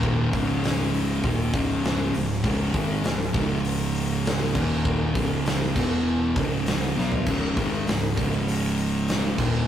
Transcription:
0.00 0.29 D#1 medium
0.00 0.32 D#2 loud
0.00 0.32 A#2 loud
0.00 0.32 D#3 loud
0.00 kick loud
0.33 1.20 C#1 loud
0.33 1.23 C#2 medium
0.33 1.23 G#2 loud
0.33 1.23 C#3 loud
0.33 kick loud
0.33 open hi-hat medium
0.64 snare loud
0.64 open hi-hat medium
0.94 open hi-hat medium
1.23 1.52 D#1 loud
1.23 1.53 D#2 loud
1.23 1.53 A#2 loud
1.23 1.54 D#3 loud
1.23 kick loud
1.23 open hi-hat medium
1.54 2.10 C#1 loud
1.54 2.13 C#2 medium
1.54 2.14 G#2 medium
1.54 2.14 C#3 loud
1.54 kick loud
1.54 open hi-hat medium
1.84 snare loud
1.84 open hi-hat medium
2.14 2.43 C#1 medium
2.14 2.39 C#2 medium
2.14 2.39 G#2 medium
2.14 open hi-hat medium
2.31 snare soft
2.43 2.72 C#1 loud
2.43 2.73 C#2 loud
2.43 2.73 G#2 loud
2.43 2.73 C#3 loud
2.43 kick loud
2.43 open hi-hat medium
2.74 3.02 G#1 loud
2.74 3.04 G#2 loud
2.74 3.04 D#3 loud
2.74 3.04 G#3 loud
2.74 kick loud
2.74 open hi-hat medium
3.04 3.33 C#1 medium
3.04 3.29 C#2 medium
3.04 3.29 G#2 medium
3.04 snare loud
3.04 open hi-hat medium
3.33 4.51 C#1 loud
3.33 4.54 C#2 medium
3.33 4.54 G#2 loud
3.33 4.54 C#3 loud
3.33 kick loud
3.33 open hi-hat medium
3.65 open hi-hat medium
3.95 open hi-hat medium
4.25 snare loud
4.25 open hi-hat loud
4.55 5.12 D#1 loud
4.55 5.14 D#2 loud
4.55 5.14 A#2 loud
4.55 5.15 D#3 loud
4.55 kick loud
4.55 crash loud
4.73 snare soft
4.85 kick loud
5.15 5.72 C#1 loud
5.15 5.75 C#2 medium
5.15 5.75 G#2 medium
5.15 5.75 C#3 medium
5.15 kick loud
5.15 open hi-hat medium
5.46 snare loud
5.46 open hi-hat medium
5.76 6.32 E1 medium
5.76 6.36 E2 loud
5.76 6.36 B2 medium
5.76 6.36 E3 medium
5.76 kick loud
5.76 crash loud
6.36 6.93 C#1 loud
6.36 6.96 C#2 medium
6.36 6.96 G#2 loud
6.36 6.96 C#3 loud
6.36 kick loud
6.36 open hi-hat medium
6.66 snare loud
6.66 open hi-hat medium
6.96 7.25 B1 loud
6.96 7.26 B2 medium
6.96 7.26 F#3 loud
6.96 7.26 B3 loud
6.96 snare medium
7.12 floor tom medium
7.26 7.55 C#1 loud
7.26 7.56 C#2 loud
7.26 7.57 G#2 loud
7.26 7.57 C#3 loud
7.26 kick loud
7.26 crash loud
7.56 7.85 G#1 loud
7.56 7.87 G#2 medium
7.56 7.87 D#3 medium
7.56 7.87 G#3 loud
7.56 kick loud
7.56 open hi-hat medium
7.87 8.16 C#1 medium
7.87 8.12 C#2 medium
7.87 8.12 G#2 medium
7.87 snare loud
7.87 open hi-hat medium
8.17 9.34 C#1 medium
8.17 9.37 C#2 medium
8.17 9.37 G#2 medium
8.17 9.37 C#3 loud
8.17 kick loud
8.17 open hi-hat medium
8.48 open hi-hat medium
8.78 open hi-hat medium
9.08 snare loud
9.08 open hi-hat medium
9.37 9.68 D#1 loud
9.37 9.68 D#2 medium
9.37 9.68 A#2 loud
9.37 9.68 D#3 loud
9.37 kick loud
9.37 crash loud

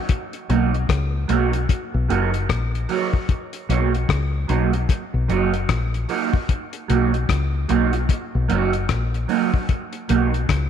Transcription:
0.09 kick loud
0.09 closed hi-hat medium
0.33 closed hi-hat medium
0.49 0.85 B1 medium
0.49 0.70 F#3 medium
0.49 0.71 A#3 medium
0.49 0.71 D#4 medium
0.49 0.71 F#4 medium
0.49 closed hi-hat medium
0.74 closed hi-hat soft
0.89 1.25 C#2 medium
0.89 kick loud
0.89 cross-stick loud
0.89 closed hi-hat loud
1.28 1.65 B1 medium
1.28 1.50 F#3 medium
1.28 1.50 A#3 medium
1.28 1.50 D#4 medium
1.28 1.51 F#4 medium
1.28 closed hi-hat medium
1.53 muted clean electric guitar stroke soft
1.53 closed hi-hat medium
1.69 kick loud
1.69 closed hi-hat medium
1.94 2.08 B1 medium
2.09 2.45 F#1 medium
2.09 2.30 F#3 medium
2.09 2.30 A#3 loud
2.09 2.31 D#4 loud
2.09 2.31 F#4 loud
2.09 closed hi-hat medium
2.34 closed hi-hat medium
2.49 2.85 A#1 medium
2.49 kick loud
2.49 cross-stick loud
2.49 closed hi-hat medium
2.75 closed hi-hat soft
2.89 3.10 F#3 medium
2.89 3.10 A#3 medium
2.89 3.11 D#4 medium
2.89 3.11 F#4 medium
2.89 open hi-hat medium
3.13 kick medium
3.29 kick loud
3.29 closed hi-hat medium
3.53 closed hi-hat medium
3.69 4.05 B1 medium
3.69 3.90 F#3 medium
3.69 3.90 A#3 medium
3.69 3.91 D#4 medium
3.69 3.91 F#4 medium
3.69 closed hi-hat medium
3.94 closed hi-hat soft
4.09 4.45 C#2 medium
4.09 kick loud
4.09 cross-stick loud
4.09 closed hi-hat medium
4.48 4.85 B1 medium
4.48 4.70 F#3 medium
4.48 4.70 A#3 medium
4.48 4.71 D#4 medium
4.48 4.71 F#4 medium
4.48 closed hi-hat medium
4.73 muted clean electric guitar stroke soft
4.73 closed hi-hat medium
4.89 kick loud
4.89 closed hi-hat medium
5.14 5.28 B1 medium
5.28 5.65 F#1 medium
5.28 5.50 F#3 medium
5.28 5.50 A#3 medium
5.28 5.50 D#4 medium
5.28 5.51 F#4 loud
5.28 closed hi-hat medium
5.54 closed hi-hat medium
5.69 6.05 A#1 medium
5.69 kick loud
5.69 cross-stick loud
5.69 closed hi-hat medium
5.94 closed hi-hat soft
6.09 6.30 F#3 medium
6.09 6.30 A#3 medium
6.09 6.31 D#4 medium
6.09 6.31 F#4 medium
6.09 open hi-hat medium
6.33 kick loud
6.49 kick loud
6.49 closed hi-hat medium
6.73 closed hi-hat medium
6.88 7.25 B1 medium
6.88 7.10 F#3 medium
6.88 7.10 A#3 medium
6.88 7.10 D#4 medium
6.88 7.11 F#4 medium
6.88 closed hi-hat medium
7.14 closed hi-hat soft
7.29 7.65 C#2 medium
7.29 kick loud
7.29 cross-stick loud
7.29 closed hi-hat loud
7.68 8.05 B1 medium
7.68 7.90 F#3 medium
7.68 7.90 A#3 medium
7.68 7.90 D#4 medium
7.68 7.91 F#4 medium
7.68 closed hi-hat medium
7.93 muted clean electric guitar stroke medium
7.93 closed hi-hat medium
8.09 kick loud
8.09 closed hi-hat loud
8.35 8.48 B1 medium
8.48 8.86 F#1 medium
8.48 8.70 F#3 medium
8.48 8.70 A#3 medium
8.48 8.70 D#4 medium
8.48 8.70 F#4 loud
8.48 closed hi-hat medium
8.73 closed hi-hat medium
8.89 9.25 A#1 medium
8.89 kick medium
8.89 cross-stick loud
8.89 closed hi-hat medium
9.14 closed hi-hat soft
9.28 9.50 F#3 medium
9.28 9.50 A#3 medium
9.28 9.50 D#4 medium
9.28 9.51 F#4 medium
9.28 open hi-hat medium
9.54 kick medium
9.69 kick medium
9.69 closed hi-hat medium
9.93 closed hi-hat medium
10.09 10.45 B1 medium
10.09 10.30 F#3 medium
10.09 10.30 A#3 medium
10.09 10.31 D#4 medium
10.09 10.31 F#4 medium
10.09 closed hi-hat medium
10.34 closed hi-hat soft
10.49 10.70 C#2 medium
10.49 kick loud
10.49 cross-stick loud
10.49 closed hi-hat loud

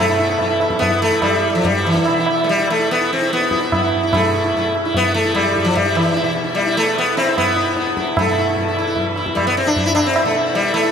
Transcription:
0.00 1.56 E2 medium
0.00 2.07 B2 medium
0.00 0.50 E3 medium
0.00 0.57 A3 medium
0.08 0.18 E4 soft
0.19 0.28 E4 soft
0.29 0.40 E4 soft
0.39 0.48 E4 soft
0.39 tabla tin medium
0.39 tabla ge medium
0.49 1.02 E3 medium
0.49 0.60 E4 soft
0.60 0.70 E4 soft
0.60 tabla na medium
0.70 0.89 E4 soft
0.70 tabla ke medium
0.79 1.01 B3 loud
0.79 tabla tin medium
0.79 tabla ge medium
0.90 1.10 E4 soft
1.02 2.60 E3 medium
1.02 1.22 A3 loud
1.02 tabla na medium
1.11 1.31 E4 soft
1.11 tabla ke medium
1.22 1.49 G3 medium
1.22 tabla na medium
1.22 tabla ge medium
1.34 1.53 E4 soft
1.50 1.53 G3 medium
1.55 3.64 E2 medium
1.55 1.65 F3 medium
1.64 1.86 G3 medium
1.64 tabla tin medium
1.64 tabla ge medium
1.75 1.94 E4 soft
1.85 2.25 E3 medium
1.85 tabla na medium
1.95 2.06 E4 soft
1.95 tabla ke medium
2.05 4.16 B2 medium
2.05 2.17 E4 soft
2.05 tabla na medium
2.18 2.29 E4 soft
2.26 2.48 E4 soft
2.26 tabla na medium
2.44 2.48 A3 medium
2.44 tabla tin medium
2.49 2.68 G3 medium
2.58 3.14 E3 medium
2.58 2.77 E4 soft
2.68 2.91 A3 medium
2.68 tabla na medium
2.79 2.98 E4 soft
2.88 3.11 B3 loud
2.88 tabla tin medium
3.00 3.19 E4 soft
3.13 4.67 E3 medium
3.13 3.32 C4 loud
3.21 3.40 E4 soft
3.30 4.14 B3 loud
3.30 tabla te medium
3.41 3.51 E4 soft
3.41 tabla te medium
3.51 3.60 E4 soft
3.51 tabla ke medium
3.61 5.71 E2 medium
3.61 3.70 E4 soft
3.61 tabla te medium
3.72 3.82 E4 soft
3.72 tabla na medium
3.72 tabla ge medium
3.83 4.01 E4 soft
3.93 tabla ge medium
4.03 4.22 E4 soft
4.13 6.21 B2 medium
4.13 4.71 A3 medium
4.13 tabla na loud
4.13 tabla ge loud
4.23 4.33 E4 soft
4.34 4.43 E4 soft
4.44 4.55 E4 soft
4.54 4.74 E4 soft
4.54 tabla tin medium
4.54 tabla ge medium
4.67 5.17 E3 medium
4.75 tabla na medium
4.85 5.04 E4 soft
4.94 5.14 B3 loud
4.94 tabla tin medium
4.94 tabla ge medium
5.05 5.23 E4 soft
5.14 6.73 E3 medium
5.14 5.34 A3 loud
5.24 5.44 E4 soft
5.35 5.66 G3 medium
5.35 tabla na medium
5.35 tabla ge medium
5.55 5.74 E4 soft
5.55 tabla ge medium
5.65 5.75 F3 medium
5.71 7.74 E2 medium
5.75 5.94 G3 medium
5.75 tabla tin medium
5.75 tabla ge medium
5.85 6.03 E4 soft
5.95 6.33 E3 medium
5.95 tabla na medium
6.05 6.12 E4 soft
6.13 6.23 E4 soft
6.13 tabla te medium
6.21 8.23 B2 medium
6.21 6.34 E4 soft
6.35 6.43 E4 soft
6.35 tabla te medium
6.44 6.64 E4 soft
6.55 6.77 G3 medium
6.55 tabla tin medium
6.66 6.85 E4 soft
6.73 7.26 E3 medium
6.73 6.98 A3 loud
6.77 tabla na medium
6.86 7.05 E4 soft
6.97 7.17 B3 medium
6.97 tabla tin medium
7.17 7.37 C4 loud
7.17 tabla na medium
7.26 8.74 E3 medium
7.26 7.46 E4 soft
7.38 8.18 B3 loud
7.38 tabla na medium
7.38 tabla ge medium
7.47 7.58 E4 soft
7.56 7.67 E4 soft
7.56 tabla te medium
7.68 7.76 E4 soft
7.74 9.73 E2 medium
7.74 7.96 E4 soft
7.74 tabla te medium
7.87 tabla te medium
7.97 8.16 E4 soft
7.97 tabla ke medium
8.07 tabla te medium
8.17 8.74 A3 medium
8.17 tabla na loud
8.17 tabla ge loud
8.24 10.22 B2 medium
8.28 8.37 E4 soft
8.38 8.48 E4 soft
8.49 8.67 E4 soft
8.56 tabla tin medium
8.56 tabla ge medium
8.68 8.77 E4 soft
8.74 9.24 E3 medium
8.74 tabla na medium
8.79 8.86 E4 soft
8.87 9.06 E4 soft
8.96 tabla tin medium
8.96 tabla ge medium
9.16 9.35 E4 soft
9.16 tabla na medium
9.24 10.73 E3 medium
9.24 tabla ke medium
9.35 9.46 G3 medium
9.35 tabla na medium
9.35 tabla ge medium
9.47 9.57 B3 medium
9.57 9.67 C4 medium
9.67 9.85 D4 medium
9.74 10.92 E2 medium
9.74 9.85 E4 soft
9.74 tabla tin medium
9.74 tabla ge medium
9.86 9.94 E4 loud
9.95 10.05 D4 loud
9.95 tabla na medium
10.06 10.25 C4 medium
10.16 10.33 E4 soft
10.16 tabla na medium
10.23 10.92 B2 medium
10.23 10.34 A3 medium
10.34 10.45 E4 soft
10.46 10.63 E4 soft
10.55 10.73 G3 medium
10.55 tabla tin medium
10.64 10.82 E4 soft
10.73 10.92 E3 medium
10.73 10.92 A3 loud
10.73 tabla na medium
10.83 10.92 E4 soft

